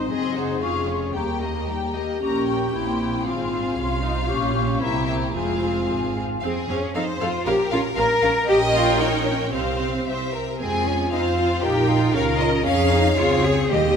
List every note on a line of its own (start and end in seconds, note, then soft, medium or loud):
0.00 0.62 C4 soft
0.00 0.10 D#4 soft
0.00 0.11 C5 soft
0.09 0.62 F#1 medium
0.09 0.62 F#2 medium
0.09 0.35 C4 soft
0.09 1.13 G#4 medium
0.09 0.36 G#4 medium
0.09 0.35 G#4 medium
0.09 0.35 D#5 soft
0.09 0.34 C6 medium
0.35 0.62 D#4 medium
0.35 0.62 F#4 soft
0.35 0.62 G#4 soft
0.35 0.63 C5 soft
0.35 0.61 C6 soft
0.62 1.15 F1 medium
0.62 1.15 F2 medium
0.62 1.15 C#4 soft
0.62 0.86 F4 soft
0.62 0.86 G#4 soft
0.62 0.88 G#4 soft
0.62 0.87 F5 soft
0.62 0.87 C#6 soft
0.87 1.14 C#4 soft
0.87 1.14 F4 soft
0.87 1.15 G#4 soft
0.87 1.15 C#5 soft
0.87 1.15 C#6 soft
1.14 2.01 D#2 medium
1.14 2.02 D#2 soft
1.14 1.40 G3 soft
1.14 1.94 A#3 soft
1.14 1.39 G4 soft
1.14 1.41 G4 soft
1.14 2.74 G4 soft
1.14 1.40 G5 soft
1.14 1.40 A#5 soft
1.41 1.69 A#3 soft
1.41 1.68 G4 soft
1.41 1.68 A#4 soft
1.41 1.69 D#5 soft
1.41 1.67 A#5 soft
1.68 1.95 G3 soft
1.68 1.94 G4 soft
1.68 1.95 G4 soft
1.68 1.95 G5 soft
1.68 1.94 A#5 soft
1.95 2.22 A#3 soft
1.95 2.21 G4 soft
1.95 2.19 A#4 soft
1.95 2.22 D#5 soft
1.95 2.21 A#5 soft
2.21 2.70 A#1 medium
2.21 2.70 A#2 soft
2.21 2.70 C#4 soft
2.21 2.47 G4 soft
2.21 2.69 A#4 soft
2.21 2.46 A#5 soft
2.21 2.47 C#6 soft
2.48 2.73 G4 soft
2.48 3.24 G5 soft
2.48 2.73 C#6 soft
2.73 3.24 A#1 medium
2.73 3.25 A#2 medium
2.73 3.25 A#3 soft
2.73 4.28 C4 soft
2.73 3.25 E4 soft
2.73 2.99 E4 soft
2.73 3.26 G4 soft
2.73 2.99 C6 soft
3.01 3.25 E4 soft
3.01 3.25 C6 soft
3.25 3.75 G#1 medium
3.25 3.75 G#2 medium
3.25 3.76 C4 soft
3.25 4.26 F4 soft
3.25 3.50 F4 soft
3.25 3.77 G#4 soft
3.25 4.80 F5 soft
3.25 3.50 C6 soft
3.51 3.76 F4 soft
3.51 3.76 C6 soft
3.76 4.27 C2 medium
3.76 4.27 C3 medium
3.76 4.02 C#4 soft
3.76 4.01 F4 soft
3.76 4.81 F4 medium
3.76 4.02 C6 medium
4.01 4.28 D#4 medium
4.01 4.27 F4 soft
4.01 4.28 C6 soft
4.28 4.80 A#1 medium
4.28 4.81 A#2 medium
4.28 4.79 C#4 medium
4.28 4.53 G4 medium
4.28 4.80 G4 medium
4.28 4.52 C#6 medium
4.54 4.79 G4 medium
4.54 4.79 C#6 soft
4.80 5.33 C2 medium
4.80 5.33 C3 medium
4.80 5.34 A#3 medium
4.80 5.34 C4 medium
4.80 5.06 E4 medium
4.80 5.34 E4 medium
4.80 5.35 G4 medium
4.80 5.05 E5 medium
4.80 5.05 A#5 medium
5.06 5.33 E4 medium
5.06 5.15 E5 medium
5.06 5.33 A#5 soft
5.33 5.87 F1 medium
5.33 5.88 F2 medium
5.33 6.15 G#3 medium
5.33 6.21 C4 medium
5.33 5.61 F4 soft
5.33 6.16 F4 medium
5.33 6.21 G#4 medium
5.33 6.20 F5 soft
5.33 5.61 G#5 soft
5.62 5.88 F4 soft
5.62 5.88 G#5 soft
5.89 6.43 G#1 medium
5.89 6.43 G#2 medium
5.89 6.15 F4 soft
5.89 6.14 G#5 soft
6.16 6.42 F4 soft
6.16 6.42 G#5 soft
6.42 6.50 F2 medium
6.42 6.51 C4 medium
6.42 6.67 C4 medium
6.42 6.91 G#4 medium
6.42 6.51 G#4 medium
6.42 6.50 F5 medium
6.68 6.76 F2 medium
6.68 6.78 C4 medium
6.68 6.94 C#4 medium
6.68 6.78 G#4 medium
6.68 6.77 F5 medium
6.94 7.03 F2 medium
6.94 7.03 C4 medium
6.94 7.03 D#4 medium
6.94 7.03 A4 medium
6.94 7.46 C5 medium
6.94 7.02 F5 medium
7.20 7.29 F2 medium
7.20 7.29 C4 medium
7.20 7.46 F4 medium
7.20 7.29 A4 medium
7.20 7.28 F5 medium
7.46 7.54 A#1 medium
7.46 7.55 C#4 medium
7.46 7.72 G4 medium
7.46 7.55 A#4 medium
7.46 8.46 A#4 medium
7.46 7.54 F5 medium
7.71 7.79 A#1 medium
7.71 7.81 C#4 medium
7.71 7.80 F4 medium
7.71 7.81 A#4 medium
7.71 7.79 F5 medium
7.95 8.04 A#1 medium
7.95 8.06 C#4 medium
7.95 8.47 A#4 loud
7.95 8.06 A#4 medium
7.95 8.03 F5 medium
8.22 8.30 A#1 medium
8.22 8.31 C#4 medium
8.22 8.31 A#4 medium
8.22 8.30 F5 medium
8.46 9.49 A#1 medium
8.46 9.49 C#4 medium
8.46 8.56 G4 loud
8.46 9.49 A#4 medium
8.46 8.99 D#5 loud
8.46 9.48 G5 medium
8.73 8.99 F4 loud
8.99 9.26 D#4 loud
8.99 9.53 C#5 medium
9.26 9.53 C#4 medium
9.52 10.05 C2 medium
9.52 10.06 C4 medium
9.52 10.05 C4 medium
9.52 10.05 G4 medium
9.52 10.01 C5 medium
9.52 10.06 F5 medium
10.06 10.39 C2 medium
10.06 10.39 C4 medium
10.06 10.39 G4 medium
10.06 10.32 C5 medium
10.06 10.39 E5 medium
10.33 10.60 A#4 medium
10.58 11.08 F2 medium
10.58 11.08 G#3 medium
10.58 10.84 C4 medium
10.58 12.10 F4 medium
10.58 11.08 G#4 medium
10.58 11.07 G#5 medium
10.86 11.12 C#4 medium
11.11 11.62 F2 medium
11.11 11.62 C4 medium
11.11 11.20 D#4 medium
11.11 11.63 C5 medium
11.11 11.63 F5 medium
11.38 11.63 F4 medium
11.62 12.13 A#1 medium
11.62 12.14 D#4 medium
11.62 11.88 G4 medium
11.62 12.14 A#4 medium
11.62 12.14 G5 medium
11.89 12.14 F4 medium
12.13 12.64 C#2 medium
12.13 12.64 C#4 medium
12.13 12.64 F4 medium
12.13 12.65 A#4 loud
12.13 12.23 C#5 medium
12.13 12.39 F5 medium
12.39 12.64 D#5 medium
12.39 12.47 D#5 medium
12.64 13.16 F2 medium
12.64 13.16 C#4 medium
12.64 12.91 C#4 loud
12.64 13.16 G#4 medium
12.64 13.71 C#5 medium
12.64 13.17 F5 medium
12.91 13.17 D#4 loud
13.17 13.70 C#2 medium
13.17 13.71 C4 medium
13.17 13.44 F4 loud
13.17 13.70 G#4 medium
13.17 13.71 C#5 medium
13.44 13.71 G#4 medium
13.70 13.96 D#2 medium
13.70 13.96 D#3 medium
13.70 13.96 A#3 medium
13.70 13.96 G4 medium
13.70 13.96 D#5 medium